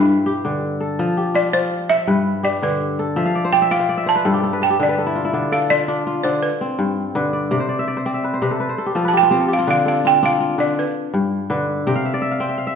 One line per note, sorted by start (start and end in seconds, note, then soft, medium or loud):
0.00 1.05 G2 medium
0.00 0.78 D4 medium
0.00 0.26 G4 medium
0.00 1.14 B4 medium
0.00 0.76 E5 medium
0.26 1.17 G4 medium
0.45 1.05 D3 medium
0.81 2.12 A4 medium
0.99 2.13 F3 medium
1.17 2.43 G4 medium
1.34 1.52 F4 medium
1.34 1.54 D5 loud
1.53 1.95 F4 medium
1.53 1.87 C5 medium
1.89 2.93 E5 medium
1.89 2.46 E5 loud
2.07 3.22 G2 medium
2.07 3.30 B4 medium
2.43 3.85 G4 medium
2.43 2.53 D5 medium
2.62 3.22 D3 medium
2.62 3.14 B4 medium
2.99 4.25 A4 medium
3.16 4.31 F3 medium
3.16 3.61 E5 medium
3.26 3.68 F5 medium
3.35 3.52 D5 medium
3.45 3.79 C5 medium
3.53 3.71 D5 medium
3.53 3.61 G5 medium
3.62 3.97 E5 medium
3.71 5.12 F4 medium
3.71 3.88 D5 medium
3.71 4.09 F5 medium
3.80 4.06 C5 medium
3.89 5.00 D5 medium
3.97 5.01 E5 medium
4.06 4.59 C5 medium
4.06 4.59 A5 medium
4.16 4.52 B4 medium
4.25 5.40 G2 medium
4.25 4.43 A4 medium
4.34 4.70 G4 medium
4.43 4.62 A4 medium
4.53 4.88 B4 medium
4.62 4.79 A4 medium
4.62 4.81 G5 medium
4.70 6.11 G4 medium
4.80 5.32 D3 medium
4.80 4.98 A4 medium
4.80 5.32 D5 medium
4.89 6.12 B4 medium
4.98 5.51 A4 medium
5.06 5.24 E4 medium
5.15 5.70 F4 medium
5.25 5.76 E4 medium
5.33 6.23 D3 medium
5.52 6.84 A4 medium
5.52 5.70 F5 medium
5.70 5.88 F4 medium
5.70 6.27 D5 medium
5.88 7.56 D4 medium
5.88 6.06 F4 medium
6.07 7.58 F4 medium
6.24 6.48 D3 medium
6.24 6.43 C5 medium
6.43 6.94 B4 medium
6.61 7.21 C4 medium
6.79 7.57 G2 medium
7.15 7.57 D3 medium
7.15 8.03 B4 medium
7.33 7.51 D5 medium
7.51 8.41 C3 medium
7.51 7.68 D5 medium
7.60 7.96 C5 medium
7.69 7.87 D5 medium
7.79 8.14 E5 medium
7.88 8.06 D5 medium
7.97 8.30 C5 medium
8.06 8.48 C4 medium
8.06 9.17 D5 medium
8.14 9.01 E5 medium
8.24 8.41 B4 medium
8.34 8.66 C5 medium
8.42 8.66 C3 medium
8.42 8.60 B4 medium
8.51 8.78 A4 medium
8.60 9.04 B4 medium
8.69 9.11 C5 medium
8.78 8.95 A4 medium
8.86 9.13 G4 medium
8.95 9.74 F3 medium
8.95 9.40 A4 medium
9.05 9.37 B4 medium
9.05 9.15 A5 medium
9.13 9.30 G4 medium
9.17 9.50 G5 loud
9.23 9.58 F4 medium
9.31 11.11 C4 medium
9.31 9.48 G4 medium
9.40 9.85 A4 medium
9.48 10.90 G4 medium
9.53 9.61 F5 medium
9.59 10.04 F4 medium
9.67 10.57 D3 medium
9.67 9.87 F5 loud
9.86 11.18 A4 medium
9.86 10.07 F5 medium
10.05 10.22 F4 medium
10.05 10.25 G5 loud
10.23 11.91 D4 medium
10.23 10.40 F4 medium
10.23 10.58 F5 medium
10.40 11.92 F4 medium
10.58 10.83 D3 medium
10.58 10.79 D5 medium
10.79 11.47 B4 medium
11.14 11.92 G2 medium
11.50 11.92 D3 medium
11.50 12.46 B4 medium
11.87 12.74 C3 medium
11.87 12.40 G5 medium
11.96 12.28 F5 medium
12.05 12.21 E5 medium
12.14 12.75 D5 medium
12.22 12.48 E5 medium
12.31 12.55 F5 medium
12.40 12.75 C4 medium
12.40 12.75 G5 medium
12.49 12.66 E5 medium
12.58 12.75 F5 medium
12.67 12.75 E5 medium